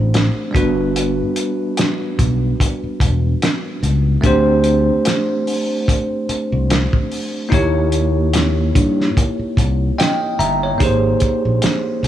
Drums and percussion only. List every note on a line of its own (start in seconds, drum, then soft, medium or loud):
0.14 snare loud
0.14 closed hi-hat medium
0.55 kick medium
0.55 closed hi-hat medium
0.96 closed hi-hat medium
1.36 closed hi-hat medium
1.77 snare loud
1.77 closed hi-hat medium
2.19 kick medium
2.19 closed hi-hat medium
2.60 kick medium
2.60 closed hi-hat medium
3.00 kick medium
3.00 closed hi-hat medium
3.42 snare medium
3.42 closed hi-hat medium
3.84 closed hi-hat medium
4.24 kick loud
4.24 closed hi-hat medium
4.64 closed hi-hat medium
5.05 snare loud
5.05 closed hi-hat medium
5.47 open hi-hat medium
5.88 kick medium
5.88 closed hi-hat medium
6.29 closed hi-hat medium
6.70 snare loud
6.70 closed hi-hat medium
6.93 kick medium
7.12 open hi-hat medium
7.52 kick loud
7.52 closed hi-hat medium
7.92 closed hi-hat medium
8.34 snare loud
8.34 closed hi-hat medium
8.75 kick medium
8.75 closed hi-hat medium
9.01 snare soft
9.17 kick medium
9.17 closed hi-hat medium
9.57 kick medium
9.57 closed hi-hat medium
10.00 snare loud
10.00 closed hi-hat medium
10.40 closed hi-hat medium
10.80 kick loud
10.80 closed hi-hat medium
11.20 kick medium
11.20 closed hi-hat medium
11.62 snare loud
11.62 closed hi-hat medium
12.04 closed hi-hat medium